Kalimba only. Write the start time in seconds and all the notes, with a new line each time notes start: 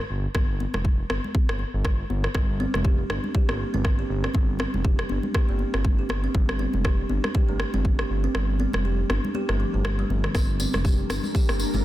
2.35 G3
2.60 C4
2.85 G4
3.10 D4
3.35 G4
3.49 A#3
3.74 C4
3.99 G4
4.24 C4
4.35 G3
4.60 C4
4.85 G4
5.10 D4
5.35 G4
5.49 A#3
5.74 C4
5.99 G4
6.24 C4
6.35 G3
6.60 C4
6.84 G4
7.10 D4
7.35 G4
7.49 A3
7.74 C4
7.99 G4
8.24 C4
8.35 G3
8.60 C4
8.85 G4
9.10 D4
9.35 G4
9.49 A3
9.60 F3
9.74 A3
9.99 G3
10.24 D3
10.35 G3
10.60 C4
10.85 G4
11.10 D4
11.35 G4
11.49 A#3
11.74 C4